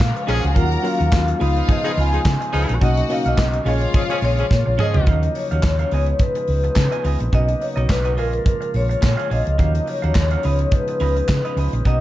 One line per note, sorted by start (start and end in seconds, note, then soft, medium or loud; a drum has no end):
0.00 0.11 A#2 loud
0.00 0.53 C#3 medium
0.00 0.54 F3 medium
0.00 0.54 G#3 medium
0.00 0.58 G#3 medium
0.00 0.54 A#3 medium
0.00 0.56 A#3 medium
0.00 0.56 C#4 medium
0.00 0.56 F4 medium
0.00 1.38 F4 medium
0.00 0.25 F5 medium
0.00 muted clean electric guitar stroke soft
0.00 kick loud
0.00 snare loud
0.00 clap loud
0.00 closed hi-hat medium
0.07 0.15 A#3 medium
0.07 0.16 A#4 medium
0.15 0.22 B3 medium
0.15 0.22 B4 medium
0.15 muted clean electric guitar stroke soft
0.15 closed hi-hat medium
0.22 0.28 C#4 medium
0.22 0.28 C#5 medium
0.27 0.39 A#1 loud
0.27 0.46 F3 loud
0.27 0.48 C#4 loud
0.27 0.46 C#4 loud
0.27 0.35 D#4 medium
0.27 0.43 G#4 medium
0.27 0.46 G#4 loud
0.27 0.43 A#4 medium
0.27 0.35 D#5 medium
0.27 0.43 G#5 medium
0.27 open hi-hat medium
0.35 0.43 F4 medium
0.35 0.43 F5 medium
0.42 0.53 C#2 loud
0.42 0.49 F#4 medium
0.42 0.49 F#5 medium
0.42 muted clean electric guitar stroke soft
0.42 closed hi-hat soft
0.49 0.56 G#4 medium
0.49 0.56 G#5 medium
0.54 0.76 D#2 loud
0.54 1.40 D#3 medium
0.54 0.78 F#3 medium
0.54 1.40 F#3 medium
0.54 0.78 A#3 medium
0.54 1.40 A#3 medium
0.54 0.76 C#4 medium
0.54 0.78 C#4 medium
0.54 1.40 C#4 medium
0.54 0.79 F4 medium
0.54 0.71 F#4 medium
0.54 1.11 A#4 medium
0.54 0.70 A#4 medium
0.54 0.69 F5 medium
0.54 1.11 A#5 loud
0.54 kick loud
0.54 closed hi-hat medium
0.59 0.86 F#5 medium
0.70 muted clean electric guitar stroke medium
0.70 closed hi-hat medium
0.83 1.40 F#3 medium
0.83 1.41 A#3 medium
0.83 0.99 C#4 medium
0.83 1.41 C#4 medium
0.83 1.39 F4 medium
0.83 0.99 F#4 medium
0.83 0.98 A#4 medium
0.83 0.98 F5 medium
0.83 open hi-hat medium
0.87 1.73 F5 medium
0.99 1.09 D#2 loud
0.99 1.11 C#4 medium
0.99 1.11 F#4 medium
0.99 1.12 A#4 soft
0.99 1.13 F#5 medium
0.99 closed hi-hat soft
1.12 1.32 D#2 medium
1.12 muted clean electric guitar stroke soft
1.12 kick loud
1.12 snare loud
1.12 clap loud
1.12 closed hi-hat medium
1.28 muted clean electric guitar stroke soft
1.28 closed hi-hat medium
1.39 1.61 C#2 loud
1.39 5.03 C#3 medium
1.39 2.80 F3 medium
1.39 2.31 G#3 medium
1.39 2.80 G#3 medium
1.39 2.31 B3 medium
1.39 2.80 B3 medium
1.39 1.57 C#4 medium
1.39 2.31 D#4 medium
1.39 3.64 D#4 medium
1.39 2.51 F4 loud
1.39 1.56 F4 medium
1.39 2.32 F4 medium
1.39 1.55 B4 loud
1.39 1.55 D#5 loud
1.39 2.51 F5 loud
1.39 open hi-hat medium
1.56 1.68 C#4 medium
1.56 1.68 F4 medium
1.56 1.69 B4 medium
1.56 1.69 D#5 medium
1.56 closed hi-hat soft
1.68 1.79 F3 medium
1.68 1.79 D#4 medium
1.68 1.79 G#4 medium
1.68 2.00 D#5 medium
1.68 muted clean electric guitar stroke soft
1.68 kick loud
1.68 closed hi-hat medium
1.84 1.92 F3 loud
1.84 1.96 C#4 medium
1.84 1.92 D#4 medium
1.84 1.97 F4 medium
1.84 1.92 G#4 loud
1.84 1.98 B4 medium
1.84 1.99 D#5 medium
1.84 closed hi-hat soft
1.97 2.17 C#2 loud
1.97 2.14 C#4 medium
1.97 2.13 F4 medium
1.97 2.12 B4 medium
1.97 2.13 F5 medium
1.97 2.51 G#5 loud
1.97 open hi-hat medium
2.12 2.20 F3 medium
2.12 2.21 D#4 medium
2.12 2.21 G#4 medium
2.12 muted clean electric guitar stroke medium
2.12 closed hi-hat soft
2.25 2.36 C#3 loud
2.25 muted clean electric guitar stroke soft
2.25 kick loud
2.25 snare loud
2.25 clap medium
2.25 closed hi-hat medium
2.41 muted clean electric guitar stroke medium
2.41 closed hi-hat soft
2.53 2.65 C#2 medium
2.53 2.77 F3 loud
2.53 2.74 C#4 medium
2.53 2.77 D#4 loud
2.53 2.69 F4 medium
2.53 2.77 G#4 loud
2.53 2.68 B4 medium
2.53 2.68 F5 medium
2.53 open hi-hat medium
2.69 2.78 A#1 medium
2.69 muted clean electric guitar stroke soft
2.69 closed hi-hat medium
2.80 3.01 B1 loud
2.80 3.65 B2 medium
2.80 3.65 F#3 medium
2.80 3.03 A#3 medium
2.80 3.64 A#3 medium
2.80 3.03 C#4 medium
2.80 3.02 C#4 medium
2.80 3.04 D#4 medium
2.80 3.37 F#4 medium
2.80 2.97 F#4 medium
2.80 3.04 F#4 medium
2.80 2.97 A#4 medium
2.80 2.96 D#5 medium
2.80 3.12 D#5 loud
2.80 3.37 F#5 medium
2.80 kick loud
2.80 closed hi-hat medium
2.97 muted clean electric guitar stroke soft
2.97 closed hi-hat medium
3.09 3.64 A#3 medium
3.09 3.65 C#4 medium
3.09 3.27 C#4 medium
3.09 3.66 D#4 medium
3.09 3.26 F#4 medium
3.09 3.67 F#4 medium
3.09 3.26 A#4 medium
3.09 3.25 D#5 medium
3.09 3.27 F5 loud
3.09 open hi-hat medium
3.26 3.34 B1 medium
3.26 3.37 C#4 soft
3.26 3.37 F#4 medium
3.26 3.38 A#4 medium
3.26 3.69 D#5 loud
3.26 3.39 F5 medium
3.26 closed hi-hat soft
3.37 3.58 B1 medium
3.37 muted clean electric guitar stroke medium
3.37 kick loud
3.37 snare loud
3.37 clap loud
3.37 closed hi-hat medium
3.53 muted clean electric guitar stroke soft
3.53 closed hi-hat soft
3.65 3.85 A#1 medium
3.65 5.05 F3 medium
3.65 5.05 G#3 medium
3.65 4.57 A#3 medium
3.65 5.05 A#3 medium
3.65 4.57 C#4 medium
3.65 3.82 C#4 loud
3.65 5.05 F4 medium
3.65 4.77 F4 loud
3.65 4.57 F4 medium
3.65 3.82 F4 loud
3.65 4.57 G#4 medium
3.65 3.81 G#4 loud
3.65 3.80 C#5 loud
3.65 4.23 C#5 medium
3.65 4.77 F5 loud
3.65 open hi-hat medium
3.81 3.94 C#4 medium
3.81 3.94 F4 medium
3.81 3.95 G#4 medium
3.81 3.95 C#5 medium
3.81 closed hi-hat soft
3.94 4.04 F3 medium
3.94 4.04 C#4 medium
3.94 4.05 G#4 medium
3.94 kick loud
3.94 closed hi-hat medium
4.10 4.18 F3 medium
4.10 4.18 C#4 medium
4.10 4.21 C#4 medium
4.10 4.22 F4 medium
4.10 4.18 G#4 loud
4.10 4.23 G#4 medium
4.10 4.24 C#5 medium
4.10 closed hi-hat soft
4.22 4.42 A#1 medium
4.22 4.39 C#4 medium
4.22 4.39 F4 medium
4.22 4.38 G#4 medium
4.22 4.82 C#5 loud
4.22 4.38 D#5 medium
4.22 open hi-hat medium
4.38 4.46 F3 medium
4.38 4.46 C#4 medium
4.38 4.46 G#4 medium
4.38 muted clean electric guitar stroke soft
4.38 closed hi-hat soft
4.51 4.62 A#2 loud
4.51 muted clean electric guitar stroke soft
4.51 kick loud
4.51 snare medium
4.66 4.76 A#1 medium
4.66 muted clean electric guitar stroke medium
4.78 5.16 F3 loud
4.78 4.99 C#4 medium
4.78 5.17 C#4 medium
4.78 4.95 F4 medium
4.78 5.17 G#4 loud
4.78 4.94 G#4 medium
4.78 5.38 D#5 loud
4.78 4.94 D#5 loud
4.78 mid tom loud
4.94 5.04 C#2 medium
4.94 muted clean electric guitar stroke medium
4.94 floor tom medium
5.07 5.27 D#2 loud
5.07 10.40 C#3 medium
5.07 7.31 F3 medium
5.07 5.91 F#3 medium
5.07 5.91 A#3 medium
5.07 5.28 C#4 medium
5.07 8.15 D#4 medium
5.07 5.24 F#4 medium
5.07 5.23 A#4 medium
5.07 5.22 F5 medium
5.07 kick loud
5.07 closed hi-hat medium
5.23 muted clean electric guitar stroke soft
5.23 closed hi-hat soft
5.35 5.62 C#5 medium
5.35 muted clean electric guitar stroke soft
5.35 open hi-hat medium
5.51 5.60 D#2 medium
5.51 5.62 C#4 soft
5.51 5.63 F#4 soft
5.51 5.64 A#4 medium
5.51 5.64 F5 medium
5.51 closed hi-hat soft
5.62 5.83 D#2 medium
5.62 6.22 C#5 medium
5.62 kick loud
5.62 snare loud
5.62 clap medium
5.62 closed hi-hat medium
5.79 5.92 C#4 medium
5.79 5.93 F#4 soft
5.79 5.93 A#4 medium
5.79 5.93 F5 medium
5.79 closed hi-hat soft
5.91 6.12 C#2 loud
5.91 7.31 G#3 medium
5.91 8.16 B3 medium
5.91 6.13 B3 medium
5.91 6.08 F4 medium
5.91 6.07 G#4 medium
5.91 6.07 D#5 medium
5.91 open hi-hat medium
6.06 muted clean electric guitar stroke soft
6.06 closed hi-hat medium
6.19 7.01 B4 medium
6.19 muted clean electric guitar stroke soft
6.19 kick loud
6.19 closed hi-hat medium
6.35 muted clean electric guitar stroke soft
6.35 closed hi-hat medium
6.47 6.68 C#2 medium
6.47 open hi-hat medium
6.64 muted clean electric guitar stroke soft
6.64 closed hi-hat soft
6.75 6.88 C#3 loud
6.75 muted clean electric guitar stroke soft
6.75 kick loud
6.75 snare loud
6.75 clap loud
6.75 closed hi-hat medium
6.92 7.03 B3 soft
6.92 7.04 F4 medium
6.92 7.04 G#4 medium
6.92 7.05 D#5 medium
6.92 closed hi-hat soft
7.04 7.16 C#2 medium
7.04 7.25 B3 medium
7.04 7.20 F4 medium
7.04 7.20 G#4 medium
7.04 7.18 D#5 medium
7.04 open hi-hat medium
7.20 7.29 A#1 medium
7.20 muted clean electric guitar stroke soft
7.20 closed hi-hat soft
7.32 7.53 B1 loud
7.32 8.17 F#3 medium
7.32 10.41 A#3 medium
7.32 7.54 C#4 medium
7.32 7.48 F#4 medium
7.32 7.48 A#4 medium
7.32 7.47 D#5 medium
7.32 7.63 D#5 loud
7.32 kick loud
7.32 closed hi-hat medium
7.48 muted clean electric guitar stroke soft
7.48 closed hi-hat soft
7.61 7.91 C#5 medium
7.61 muted clean electric guitar stroke soft
7.61 open hi-hat medium
7.76 7.86 B1 medium
7.76 7.87 C#4 medium
7.76 7.88 F#4 medium
7.76 7.88 A#4 medium
7.76 7.89 D#5 medium
7.76 closed hi-hat soft
7.89 8.18 B1 medium
7.89 8.03 B4 medium
7.89 muted clean electric guitar stroke soft
7.89 kick loud
7.89 snare loud
7.89 clap medium
7.89 closed hi-hat medium
8.05 8.17 C#4 medium
8.05 8.17 F#4 medium
8.05 8.18 A#4 medium
8.05 8.19 D#5 medium
8.05 closed hi-hat medium
8.17 8.38 A#1 medium
8.17 9.58 F3 medium
8.17 9.57 G#3 medium
8.17 8.38 F4 medium
8.17 9.57 F4 medium
8.17 8.33 G#4 medium
8.17 8.77 A#4 medium
8.17 8.32 C#5 loud
8.17 8.31 F5 loud
8.17 open hi-hat medium
8.33 muted clean electric guitar stroke soft
8.33 closed hi-hat soft
8.45 muted clean electric guitar stroke soft
8.45 kick loud
8.45 closed hi-hat medium
8.61 muted clean electric guitar stroke soft
8.61 closed hi-hat soft
8.74 8.94 A#1 medium
8.74 9.34 C#5 medium
8.74 open hi-hat medium
8.89 muted clean electric guitar stroke soft
8.89 closed hi-hat soft
9.01 9.14 A#2 loud
9.01 muted clean electric guitar stroke soft
9.01 kick loud
9.01 snare loud
9.01 clap medium
9.01 closed hi-hat medium
9.17 9.29 F4 soft
9.17 9.29 G#4 medium
9.17 9.30 C#5 medium
9.17 9.30 F5 medium
9.17 closed hi-hat soft
9.30 9.42 A#1 loud
9.30 9.51 F4 medium
9.30 9.46 G#4 medium
9.30 9.45 C#5 medium
9.30 9.90 D#5 medium
9.30 9.45 F5 medium
9.30 open hi-hat medium
9.46 9.56 C#2 medium
9.46 muted clean electric guitar stroke medium
9.46 closed hi-hat soft
9.58 9.79 D#2 loud
9.58 11.83 F3 medium
9.58 10.43 F#3 medium
9.58 9.79 C#4 medium
9.58 10.42 D#4 medium
9.58 9.75 F#4 medium
9.58 9.74 A#4 medium
9.58 9.73 F5 medium
9.58 kick medium
9.58 closed hi-hat medium
9.75 muted clean electric guitar stroke soft
9.75 closed hi-hat soft
9.86 10.16 C#5 medium
9.86 muted clean electric guitar stroke soft
9.86 open hi-hat medium
10.02 10.12 D#2 medium
10.02 10.14 C#4 medium
10.02 10.14 F#4 medium
10.02 10.15 A#4 medium
10.02 10.15 F5 medium
10.02 closed hi-hat soft
10.14 10.35 D#2 medium
10.14 10.75 C#5 loud
10.14 muted clean electric guitar stroke soft
10.14 kick loud
10.14 snare loud
10.14 clap medium
10.14 closed hi-hat medium
10.30 10.43 C#4 medium
10.30 10.44 F#4 medium
10.30 10.45 A#4 medium
10.30 10.45 F5 medium
10.30 closed hi-hat soft
10.43 10.64 C#2 loud
10.43 11.84 C#3 medium
10.43 11.84 G#3 medium
10.43 12.01 B3 medium
10.43 10.65 C#4 medium
10.43 12.01 D#4 medium
10.43 10.60 F4 medium
10.43 10.60 B4 medium
10.43 10.59 D#5 medium
10.43 open hi-hat medium
10.59 muted clean electric guitar stroke soft
10.59 closed hi-hat soft
10.71 11.54 B4 medium
10.71 muted clean electric guitar stroke soft
10.71 kick loud
10.71 closed hi-hat medium
10.88 muted clean electric guitar stroke soft
10.88 closed hi-hat soft
11.00 11.20 C#2 medium
11.00 11.21 C#4 medium
11.00 11.17 F4 medium
11.00 11.16 B4 medium
11.00 11.16 D#5 medium
11.00 open hi-hat medium
11.17 muted clean electric guitar stroke soft
11.17 closed hi-hat soft
11.28 11.40 C#3 loud
11.28 muted clean electric guitar stroke soft
11.28 kick loud
11.28 snare loud
11.28 clap medium
11.28 closed hi-hat medium
11.45 11.56 C#4 medium
11.45 11.57 F4 medium
11.45 11.57 B4 medium
11.45 11.58 D#5 medium
11.45 closed hi-hat soft
11.56 11.68 C#2 medium
11.56 11.78 C#4 medium
11.56 11.73 F4 medium
11.56 11.73 B4 medium
11.56 11.72 D#5 medium
11.56 open hi-hat medium
11.73 11.82 A#1 medium
11.73 muted clean electric guitar stroke soft
11.73 closed hi-hat soft
11.85 12.01 B1 loud
11.85 12.01 C#3 medium
11.85 12.01 F#3 medium
11.85 12.01 A#3 medium
11.85 12.01 C#4 medium
11.85 12.01 F#4 medium
11.85 12.01 A#4 medium
11.85 12.01 D#5 loud
11.85 kick loud
11.85 closed hi-hat medium